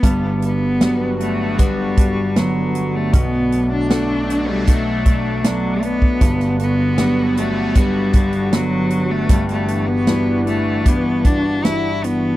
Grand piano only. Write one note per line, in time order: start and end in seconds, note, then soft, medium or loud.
0.03 3.09 G1 medium
0.03 3.09 G2 medium
0.81 1.56 F#3 soft
0.81 1.57 G3 soft
0.81 1.57 B3 soft
2.36 3.11 D3 soft
2.36 3.11 F#3 soft
2.36 3.11 B3 medium
3.13 6.17 B1 medium
3.13 6.17 B2 medium
3.90 4.65 A3 soft
3.90 4.65 B3 soft
3.90 4.65 D4 soft
5.43 6.19 A3 soft
5.43 6.19 B3 soft
5.43 6.19 D4 medium
6.21 9.26 G1 medium
6.21 9.26 G2 medium
6.98 7.73 F#3 soft
6.98 7.74 G3 soft
6.98 7.74 B3 soft
8.52 9.28 D3 soft
8.52 9.27 F#3 medium
8.52 9.28 B3 medium
9.29 12.37 G1 medium
9.29 12.37 G2 medium
10.07 10.83 E3 soft
10.07 10.83 G3 soft
10.07 10.83 D4 soft
11.64 12.37 E3 soft
11.64 12.37 G3 soft
11.64 12.37 D4 soft